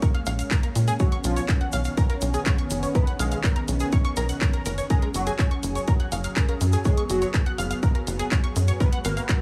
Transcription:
Already playing: G#3 A#3 C#4
0.02 A#4 A#5, kick, closed hi-hat, shaker
0.14 F5 F6, closed hi-hat
0.26 A#1 F5 F6, open hi-hat, shaker
0.39 F5 F6, closed hi-hat, shaker
0.51 A#4 A#5, kick, clap, closed hi-hat, shaker
0.63 A#4 A#5, closed hi-hat
0.75 A#2, open hi-hat, shaker
0.88 G#4 G#5, closed hi-hat, shaker
0.99 D#3 B3 F#4 C#5 C#6, kick, closed hi-hat, shaker
1.12 C#6, closed hi-hat
1.24 B1 F4, open hi-hat, shaker
1.36 C#5 C#6, closed hi-hat, shaker
1.49 A#4 A#5, kick, clap, closed hi-hat, shaker
1.61 F#5 F#6, closed hi-hat
1.72 B1 F5 F6, open hi-hat, shaker
1.84 F5 F6, closed hi-hat, shaker
1.97 A#4 A#5, kick, closed hi-hat, shaker
2.10 A#4 A#5, closed hi-hat
2.21 B1, open hi-hat, shaker
2.34 G#4 G#5, closed hi-hat, shaker
2.45 C#5 C#6, kick, clap, closed hi-hat, shaker
2.58 C#6, closed hi-hat
2.70 F#1, open hi-hat, shaker
2.83 C#5 C#6, closed hi-hat, shaker
2.95 A#4 B4 A#5, kick, closed hi-hat, shaker
3.07 F#5 F#6, closed hi-hat
3.19 B1 G#4 F5 F6, open hi-hat, shaker
3.31 F5 F6, closed hi-hat, shaker
3.44 A#4 A#5, kick, clap, closed hi-hat, shaker
3.56 A#4 A#5, closed hi-hat
3.68 B1, open hi-hat, shaker
3.80 G#4 G#5, closed hi-hat, shaker
3.92 C#5 C#6, kick, closed hi-hat, shaker
4.05 C#6, closed hi-hat
4.17 B1 A#4 A#5, open hi-hat, shaker
4.29 F#5 F#6, closed hi-hat, shaker
4.41 A#4 A#5, kick, clap, closed hi-hat, shaker
4.53 A#4 A#5, closed hi-hat
4.66 F#1 A#4 A#5, open hi-hat, shaker
4.78 C#5 C#6, closed hi-hat, shaker
4.90 F#3 G#4 A#4 A#5, kick, closed hi-hat, shaker
5.02 A#4 A#5, closed hi-hat
5.14 F#1 F#4, open hi-hat, shaker
5.27 G#4 G#5, closed hi-hat, shaker
5.39 C#5 C#6, kick, clap, closed hi-hat, shaker
5.51 C#6, closed hi-hat
5.63 F#1, open hi-hat, shaker
5.75 C#5 C#6, closed hi-hat, shaker
5.88 A#4 A#5, kick, closed hi-hat, shaker
6.00 F#5 F#6, closed hi-hat
6.12 F#1 F5 F6, open hi-hat, shaker
6.24 F5 F6, closed hi-hat, shaker
6.36 A#4 A#5, kick, clap, closed hi-hat, shaker
6.49 A#4 A#5, closed hi-hat
6.61 F#2, open hi-hat, shaker
6.72 G#4 G#5, closed hi-hat, shaker
6.84 B3 G#4 C#5 C#6, kick, closed hi-hat, shaker
6.97 C#6, closed hi-hat
7.10 F#1 F#4, open hi-hat, shaker
7.22 C#5 C#6, closed hi-hat, shaker
7.34 A#4 A#5, kick, clap, closed hi-hat, shaker
7.46 F#5 F#6, closed hi-hat
7.58 F#1 F5 F6, open hi-hat, shaker
7.71 F5 F6, closed hi-hat, shaker
7.83 A#4 A#5, kick, closed hi-hat, shaker
7.95 A#4 A#5, closed hi-hat
8.07 F#1, open hi-hat, shaker
8.19 G#4 G#5, closed hi-hat, shaker
8.31 C#5 C#6, kick, clap, closed hi-hat, shaker
8.44 C#6, closed hi-hat
8.56 F#2, open hi-hat, shaker
8.68 C#5 C#6, closed hi-hat, shaker
8.80 G#3 F#4 A#4 B4 A#5, kick, closed hi-hat, shaker
8.92 F#5 F#6, closed hi-hat
9.05 G#1 A#4 F5 F6, open hi-hat, shaker
9.17 F5 F6, closed hi-hat, shaker
9.29 A#4 A#5, kick, clap, closed hi-hat, shaker

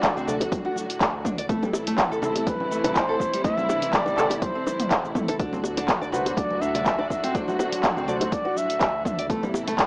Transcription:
Already playing: A2 D3 F#3 A3 D4 F#4 C5 D5
0.03 A4, kick, clap, closed hi-hat, mid tom, low bongo, shaker
0.16 D2 C4, shaker
0.27 F#3 A3 D4 F#4 A4 D5, low conga, shaker
0.40 closed hi-hat, high bongo, low bongo, shaker
0.52 kick, closed hi-hat, high conga, shaker
0.65 F#4, low bongo
0.76 high conga, shaker
0.90 closed hi-hat, shaker
1.00 D2, kick, clap, closed hi-hat, low bongo, shaker
1.25 D4, kick, mid tom, low bongo, shaker
1.38 D5, closed hi-hat, shaker
1.49 A1 C3 E3 A3 B3 C4 E4 A4, kick, closed hi-hat, shaker
1.63 G3, low bongo, high conga, shaker
1.73 high bongo, shaker
1.87 A3, closed hi-hat, low bongo, shaker
1.98 kick, clap, closed hi-hat, mid tom, shaker
2.11 A1 A4, shaker
2.22 A3 C4 E4 A4, low bongo, high conga, low conga, shaker
2.35 closed hi-hat, high bongo, shaker
2.47 A1 B4, kick, closed hi-hat, low bongo, high conga, shaker
2.60 high conga
2.71 A3, shaker
2.84 A4, closed hi-hat, low bongo, high conga, low conga, shaker
2.96 E4 C5, kick, clap, closed hi-hat, shaker
3.08 A4, low bongo
3.20 E1 A3, kick, shaker
3.33 G3, closed hi-hat, shaker
3.44 A3 C4 E4 B4 C5 E5, kick, closed hi-hat, low bongo, shaker
3.58 C4, high conga, shaker
3.69 D4, high bongo, low bongo, shaker
3.82 closed hi-hat, high conga, shaker
3.93 E4 D5, kick, clap, closed hi-hat, mid tom, shaker
4.06 A1 G3, low bongo, shaker
4.18 A3 C4 E4 A4, clap, low conga, shaker
4.30 closed hi-hat, high bongo, low bongo, shaker
4.36 D5
4.42 C5, kick, closed hi-hat, high conga, shaker
4.55 C4
4.67 low bongo, high conga, shaker
4.80 closed hi-hat, mid tom, shaker
4.91 kick, clap, closed hi-hat, low bongo, shaker
5.04 A1, shaker
5.15 A3 B3 C4 E4 A4, kick, mid tom, shaker
5.28 A4, closed hi-hat, low bongo, shaker
5.39 D2 A2 D3 F#3 A3 D4 F#4 A4, kick, closed hi-hat, low bongo, shaker
5.53 C4, high conga, shaker
5.64 high bongo, shaker
5.77 D4, closed hi-hat, low bongo, shaker
5.88 kick, clap, closed hi-hat, mid tom, shaker
6.01 D2 D5, low bongo, shaker
6.12 F#3 A3 D4 F#4 B4 C5, high conga, low conga, shaker
6.26 closed hi-hat, high bongo, shaker
6.37 D2 D5, kick, closed hi-hat, low bongo, high conga, shaker
6.51 high conga
6.61 D4 E5, low bongo, shaker
6.74 D5, closed hi-hat, high conga, low conga, shaker
6.86 A4, kick, clap, closed hi-hat, shaker
6.99 D5, low bongo
7.10 A1 D4 E5, kick, shaker
7.23 C4, closed hi-hat, low bongo, shaker
7.35 F#3 A3 D4 F#4 C5, kick, closed hi-hat, shaker
7.48 F#4, high conga, shaker
7.59 F#4, high bongo, low bongo, shaker
7.72 closed hi-hat, high conga, shaker
7.83 A4, kick, clap, closed hi-hat, mid tom, low bongo, shaker
7.96 D2 C4, shaker
8.08 F#3 A3 D4 F#4 A4 C5 D5, low conga, shaker
8.21 closed hi-hat, high bongo, low bongo, shaker
8.32 D5, kick, closed hi-hat, high conga, shaker
8.45 F#4, low bongo
8.57 E5, high conga, shaker
8.70 closed hi-hat, shaker
8.80 D2, kick, clap, closed hi-hat, low bongo, shaker
9.05 D4 E5, kick, mid tom, low bongo, shaker
9.19 D5, closed hi-hat, shaker
9.30 A1 C3 E3 A3 B3 C4 E4 A4, kick, closed hi-hat, shaker
9.43 G3, low bongo, high conga, shaker
9.54 high bongo, shaker
9.67 A3, closed hi-hat, low bongo, shaker
9.79 kick, clap, closed hi-hat, mid tom, shaker

